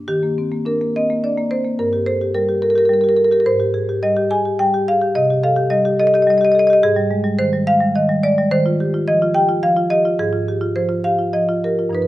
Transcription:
0.08 D#3 G4
0.23 A#3
0.38 C4
0.52 A#3
0.65 D4 A#4
0.81 A#3
0.96 C4 D#5
1.10 A#3
1.24 D4 D5
1.38 A#3
1.51 C4 C5
1.64 A#3
1.79 G2 A#4
1.93 G4
2.06 A4 C5
2.21 G4
2.35 G3 A#4
2.49 G4
2.62 A4 A#4
2.70 A#4
2.76 G4 A#4
2.85 G3 A#4
2.93 A#4
3.01 G4 A#4
3.09 A#4
3.17 A4 A#4
3.25 A#4
3.31 G4 A#4
3.40 A#4
3.46 G#2 C5
3.60 G4
3.74 G#4
3.89 G4
4.03 G3 D#5
4.17 G4
4.30 G#4 G#5
4.45 G4
4.59 G3 G5
4.74 G4
4.88 G#4 F5
5.01 G4
5.15 C3 D#5
5.30 G4
5.43 A4 F5
5.56 G4
5.70 G3 D#5
5.85 G4
6.00 A4 D#5
6.07 D#5
6.14 G4 D#5
6.22 D#5
6.27 G3 D#5
6.38 G4 D#5
6.45 D#5
6.52 A4 D#5
6.59 D#5
6.67 G4 D#5
6.73 D#5
6.83 G#2 G#4
6.97 G3
7.11 G#3
7.24 G3
7.39 D#3 C5
7.53 G3
7.67 G#3 F5
7.81 G3
7.96 D#3 D#5
8.09 G3
8.23 G#3 D5
8.38 G3
8.51 D#3 C5
8.66 F4
8.80 G4
8.94 F4
9.08 F3 D#5
9.22 F4
9.34 G4 G5
9.49 F4
9.63 F3 F5
9.77 F4
9.90 G4 D#5
10.05 F4
10.19 G#2 G#4
10.33 F4
10.48 G4
10.61 F4
10.76 F3 C5
10.89 F4
11.04 G4 F5
11.19 F4
11.33 F3 D#5
11.49 F4
11.64 G4 A#4
11.79 F4
11.89 G2 F3 D#4
11.95 B4
12.02 B4

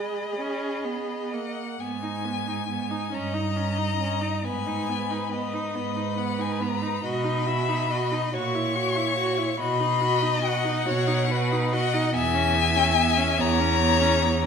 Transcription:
Already playing: G#3 G#4 D#5 B5
0.36 C#4
0.85 B3
1.33 A#3 F#5
1.80 G#2 B3 G#5
2.03 D#4
2.25 B3
2.47 D#4
2.69 B3
2.91 D#4
3.12 G2 C#4 D#5 A#5
3.34 D#4
3.56 C#4
3.78 D#4
3.99 C#4
4.22 D#4
4.44 G#2 B3 B4 G#5
4.67 D#4
4.89 B3
5.11 D#4
5.32 B3 D#5
5.53 D#4
5.75 G#2 B3 B4
5.96 D#4
6.18 B3 F#5
6.39 D#4 G#5
6.61 B3 A#5
6.82 D#4
7.04 B2 F#4 D#5 B5
7.25 D#4
7.46 F#4 E5
7.69 D#4
7.90 F#4 D#5
8.12 D#4
8.33 A#2 F#4 C#5 C#6
8.55 E4
8.75 F#4
8.96 E4
9.17 F#4
9.37 E4
9.59 B2 F#4 D#5 B5
9.79 D#4
10.01 F#4
10.22 D#4
10.43 F#4 F#5
10.65 D#4
10.86 B2 F#4 C#5
11.07 D#4
11.30 F#4 B4
11.52 D#4
11.73 F#4 D#5 F#5
11.94 D#4
12.14 E2 B3 E5 G#5
12.35 C#4
12.55 B3
12.76 C#4
12.97 B3
13.17 C#4
13.38 E2 B3 C#5 A#5
13.60 C#4
13.80 B3
14.01 C#4
14.22 B3
14.43 C#4

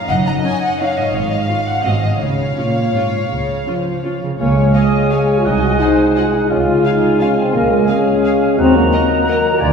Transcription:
Already playing: F#2 C#4
0.00 D#4
0.05 F#2 A#4 D#5
0.09 F#1 F#5
0.26 A#5
0.43 C#4 D#4 G#5
0.61 F#5
0.80 C#4 D#4 C#5 F5
0.96 G#2 D#5
1.01 C#4
1.05 F4
1.10 G#1 G#2 G#4 F5
1.14 C#5
1.31 D#5
1.48 C#4 F4 F5
1.67 G#2 F#5
1.72 C4
1.76 F#4
1.81 G#4
1.85 G#1 G#2 C4 F#4 D#5 F5
2.02 C#3 D#5
2.07 C#4
2.12 F4
2.16 G#4
2.20 C#2 C#3 C#5 F5
2.57 A#2 C#4 F4
2.95 G#2 C#4 F4
3.31 C#2 C#3
3.67 F3 C#4 F4
4.04 C#4 F4
4.23 C#3
4.39 C#2 C#3 G#3 A#3 C#5 F5 G#5
4.56 G#3
4.75 G#4 C#5 D#5 F5 G#5
4.94 F4
5.11 G#4 C#5 F5 G#5
5.29 G#4
5.38 F4
5.45 C2 C3 D#4 D#5 F#5
5.62 G#3 F#4
5.79 D#4 G#4 C5 D#5 F#5 G#5
5.99 F#4
6.16 F4 G#4 D#5 F#5 G#5
6.34 D#4 G#4
6.50 C#2 C#3 G#3 C#4 F4 F5 G#5
6.68 G#3 F4
6.85 D#4 G#4 F5 G#5
7.04 F4
7.20 C#4 F5 G#5
7.37 C4 G#4
7.54 C#2 C#3 A#3 A#4
7.71 G#3
7.89 C#4 G#4 F5 G#5
8.08 F4
8.25 F5 G#5
8.43 G#4
8.58 D#2 D#3 F#3 C4 F#4 D#5 F#5 A#5
8.76 F#3 A#3
8.93 A#4 D#5 F#5
9.11 F#4
9.28 A#4 D#5 F#5
9.46 F#4
9.54 F#4
9.60 D2 D3 A#3 F4 D5 G#5

